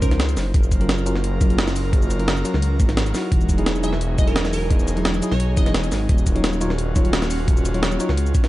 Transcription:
Already playing: F3 D#4 C5
0.02 C#2 F3 C#4 D#4 A#4 C5, kick, closed hi-hat, shaker
0.11 snare, closed hi-hat
0.20 snare, closed hi-hat
0.29 closed hi-hat, shaker
0.37 F#1 F#3 F4 A#4, snare, open hi-hat, shaker
0.54 F#1, kick, closed hi-hat
0.63 shaker
0.72 kick, closed hi-hat, shaker
0.80 F#3 C#4 F4 A#4, closed hi-hat
0.89 snare, closed hi-hat
0.98 shaker
1.06 F#3 C#4 F4 A#4, closed hi-hat, shaker
1.15 snare
1.24 closed hi-hat
1.40 F#1 F#3 C#4 F4 A#4, kick, closed hi-hat, shaker
1.50 closed hi-hat
1.58 snare, closed hi-hat
1.68 snare, closed hi-hat, shaker
1.76 open hi-hat, shaker
1.93 kick, closed hi-hat
2.02 shaker
2.11 closed hi-hat, shaker
2.19 F#3 C#4 F4 A#4, closed hi-hat
2.28 snare, closed hi-hat
2.37 shaker
2.44 F#3 C#4 F4 A#4, closed hi-hat, shaker
2.54 C#2, snare
2.62 closed hi-hat
2.80 G#1, kick, closed hi-hat, shaker
2.89 snare, closed hi-hat
2.97 snare, closed hi-hat
3.06 closed hi-hat, shaker
3.13 F#3 D#4 E4 F#4, snare, open hi-hat, shaker
3.32 E1 D#4 G#4, kick, closed hi-hat
3.41 shaker
3.49 kick, closed hi-hat, shaker
3.58 F#3 D#4 E4 G#4, closed hi-hat
3.66 snare, closed hi-hat
3.75 shaker
3.83 F#3 D#4 E4 G#4 E5, closed hi-hat, shaker
3.93 snare
4.01 closed hi-hat
4.18 E1 F#3 D#4 E4 G#4 D#5, kick, closed hi-hat, shaker
4.27 A#4, closed hi-hat
4.36 snare, closed hi-hat
4.45 snare, closed hi-hat, shaker
4.53 A#4, open hi-hat, shaker
4.70 kick, closed hi-hat
4.79 shaker
4.88 closed hi-hat, shaker
4.97 F#3 D#4 E4 G#4, closed hi-hat
5.05 snare, closed hi-hat
5.14 shaker
5.22 F#3 D#4 E4 G#4, closed hi-hat, shaker
5.31 B1 C#5, snare
5.40 closed hi-hat
5.57 E1 F#3 D#4 E4 G#4 D#5, kick, closed hi-hat, shaker
5.66 D#5, snare, closed hi-hat
5.74 snare, closed hi-hat
5.84 closed hi-hat, shaker
5.92 G#1, snare, open hi-hat, shaker
6.09 D#1 C#4 F4 F#4, kick, closed hi-hat
6.18 shaker
6.27 kick, closed hi-hat, shaker
6.35 F#3 D#4 F4 C#5, closed hi-hat
6.44 snare, closed hi-hat
6.53 shaker
6.60 F#3 D#4 F4 C#5, closed hi-hat, shaker
6.70 snare
6.78 closed hi-hat
6.95 D#1 F#3 D#4 F4 C#5, kick, closed hi-hat, shaker
7.05 closed hi-hat
7.13 snare, closed hi-hat
7.22 snare, closed hi-hat, shaker
7.31 open hi-hat, shaker
7.48 kick, closed hi-hat
7.57 shaker
7.65 closed hi-hat, shaker
7.74 F#3 D#4 F4 C#5, closed hi-hat
7.83 snare, closed hi-hat
7.92 shaker
8.00 F#3 D#4 F4 C#5, closed hi-hat, shaker
8.09 C#2, snare
8.17 closed hi-hat
8.26 shaker
8.35 kick, closed hi-hat, shaker
8.44 snare, closed hi-hat

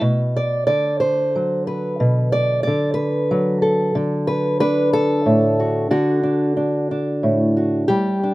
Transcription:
0.01 B2
0.37 D5
0.67 D3 D5
1.00 C5
1.36 F#3
1.67 B4
2.00 B2
2.32 D5
2.63 D5
2.67 D3
2.94 B4
3.31 F#3
3.62 A4
3.95 D3
4.27 B4
4.60 D4 B4
4.93 A4
5.26 A2
5.60 F#4
5.91 D3 F#4
6.23 D4
6.57 D4
6.91 D4
7.23 A2
7.57 F#4
7.88 G3 G4
8.23 D4

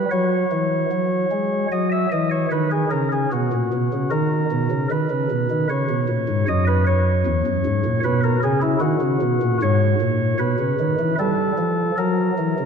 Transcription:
0.11 F#3 C#5
0.51 E3
0.91 F#3
1.31 G#3
1.72 F#3 D#5
1.92 E5
2.12 E3 D#5
2.31 C#5
2.52 D#3 B4
2.71 G#4
2.91 C#3 A#4
3.12 G#4
3.32 B2 F#4
3.52 A#2
3.73 B2
3.93 C#3
4.11 D#3 A#4
4.51 B2
4.70 C#3
4.91 D#3 B4
5.10 C#3
5.30 B2
5.50 D#3
5.70 C#3 C#5
5.89 B2
6.08 A#2
6.28 G#2
6.48 F#2 D#5
6.67 B4
6.87 C#5
7.26 E2
7.46 F#2
7.65 G#2
7.85 A#2
8.04 B2 B4
8.24 A#4
8.43 C#3 G#4
8.62 E4
8.80 D#3 F#4
9.01 C#3
9.21 B2
9.42 A#2
9.62 G#2 C#5
10.01 A#2
10.39 B2 B4
10.59 C#3
10.80 D#3
10.99 E3
11.19 G3 A4
11.58 F3
11.98 F#3 A#4
12.38 E3
12.59 C#3

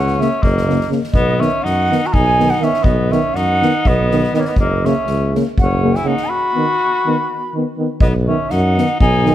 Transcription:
Already playing: C#2 C#4 F#5
0.07 snare
0.18 C#3 A#3 C#4 E5, snare
0.43 F#1 A#3 D#5, kick
0.57 snare
0.67 C#3 A#3, snare
0.81 snare
0.89 C#3 A#3, snare
1.03 snare
1.12 B1 B3 D#5, kick
1.39 D#3 B3 C#4 E5, snare
1.62 F#2 D#4 F#5, snare
1.90 D#3 B3, snare
2.06 F#4 A#5
2.14 B1 D#4 G#5, kick
2.39 D#3 B3, snare
2.50 D#4 F#5, snare
2.59 D#3 B3 E5, snare
2.64 C#4
2.74 snare
2.83 B1 B3 D#5, kick
3.11 D#3 B3 C#4 E5, snare
3.34 F#2 D#4 F#5, snare
3.62 D#3 B3, snare
3.85 B1 B3 D#5, kick
4.11 D#3 B3, snare
4.23 snare
4.33 D#3 B3 D#5, snare
4.38 A#3 C#5
4.45 B3 D#5, snare
4.56 F#1 A#3 D#5, kick
4.85 C#3 A#3 C#4 E5, snare
5.07 C#2, snare
5.33 C#3 A#3, snare
5.58 F#1 C#4 F#5, kick
5.82 C#3 A#3
5.95 E4 G#5, snare
6.04 C#3 A#3 D#4 F#5
6.17 snare
6.28 F#4 B5
6.54 D#3 B3
7.06 D#3 B3
7.54 D#3 B3
7.78 D#3 B3
8.00 B1 B3 D#5, kick
8.26 D#3 B3 C#4 E5
8.49 F#2 D#4 F#5, snare
8.77 D#3 B3, snare
8.99 B1 D#4 G#5, kick
9.25 D#3 B3, snare

